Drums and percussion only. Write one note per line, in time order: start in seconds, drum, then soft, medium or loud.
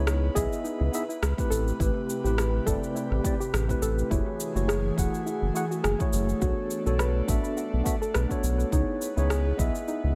0.07 cross-stick loud
0.07 cabasa soft
0.36 kick loud
0.36 cabasa medium
0.53 cabasa soft
0.65 cabasa soft
0.94 cabasa medium
1.10 cabasa soft
1.23 cross-stick loud
1.23 cabasa soft
1.38 kick loud
1.38 cabasa soft
1.52 cabasa medium
1.68 cabasa soft
1.80 kick loud
1.80 cabasa soft
2.10 cabasa medium
2.26 cabasa soft
2.38 cross-stick loud
2.38 cabasa soft
2.67 kick loud
2.67 cabasa medium
2.84 cabasa soft
2.96 cabasa soft
3.12 cross-stick soft
3.25 kick loud
3.25 cabasa medium
3.41 cabasa soft
3.54 cross-stick loud
3.54 cabasa soft
3.69 kick medium
3.69 cabasa soft
3.83 cabasa medium
3.99 cabasa soft
4.11 kick loud
4.11 cabasa soft
4.40 cabasa medium
4.56 cabasa soft
4.69 cross-stick medium
4.69 cabasa soft
4.98 kick medium
4.98 cabasa medium
5.14 cabasa soft
5.27 cabasa soft
5.56 cabasa medium
5.72 cabasa soft
5.84 cross-stick medium
5.84 cabasa soft
6.00 kick loud
6.00 cabasa soft
6.13 cabasa medium
6.29 cabasa soft
6.42 kick loud
6.42 cabasa soft
6.71 cabasa medium
6.87 cabasa soft
6.99 cross-stick medium
6.99 cabasa soft
7.28 kick loud
7.28 cabasa medium
7.44 cabasa soft
7.57 cabasa soft
7.86 kick loud
7.86 cabasa medium
8.02 cabasa soft
8.14 cross-stick medium
8.14 cabasa soft
8.31 kick medium
8.31 cabasa soft
8.44 cabasa medium
8.60 cabasa soft
8.72 kick loud
8.72 cabasa soft
9.02 cabasa medium
9.18 cabasa soft
9.30 cross-stick loud
9.30 cabasa soft
9.59 kick loud
9.59 cabasa medium
9.75 cabasa soft
9.88 cabasa soft